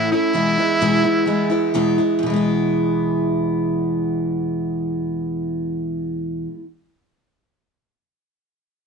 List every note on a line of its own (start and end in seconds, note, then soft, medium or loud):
0.00 0.12 A2 medium
0.00 0.12 E3 medium
0.00 0.12 A3 medium
0.00 0.12 C#4 medium
0.00 0.11 E4 medium
0.00 0.11 E4 loud
0.12 0.34 A3 medium
0.12 0.35 C#4 medium
0.12 0.34 E4 medium
0.12 1.71 E4 loud
0.33 0.56 E2 medium
0.33 0.57 B2 medium
0.33 0.57 E3 medium
0.33 0.57 G#3 loud
0.33 0.57 B3 loud
0.33 0.56 E4 medium
0.58 0.80 E3 soft
0.58 0.81 G#3 soft
0.58 0.80 B3 medium
0.58 0.80 E4 medium
0.81 1.03 E2 medium
0.81 1.04 B2 medium
0.81 1.04 E3 loud
0.81 1.03 G#3 loud
0.81 1.03 B3 loud
0.81 1.03 E4 loud
1.04 1.25 E3 medium
1.04 1.26 G#3 medium
1.04 1.26 B3 medium
1.04 1.27 E4 medium
1.26 1.50 E3 medium
1.26 1.50 G#3 medium
1.26 1.50 B3 medium
1.26 1.48 E4 medium
1.50 1.73 E3 medium
1.50 1.74 G#3 medium
1.50 1.74 B3 medium
1.50 1.74 E4 medium
1.74 1.99 E2 medium
1.74 1.99 B2 medium
1.74 1.99 E3 medium
1.74 1.98 G#3 loud
1.74 1.97 B3 loud
1.74 1.97 E4 medium
1.98 2.25 E3 medium
1.98 2.24 G#3 medium
1.98 2.24 B3 medium
1.98 2.24 E4 medium
2.19 6.46 E2 medium
2.23 6.50 B2 medium
2.23 6.54 E3 loud
2.30 6.57 G#3 medium
2.30 6.61 B3 medium
2.36 6.64 E4 loud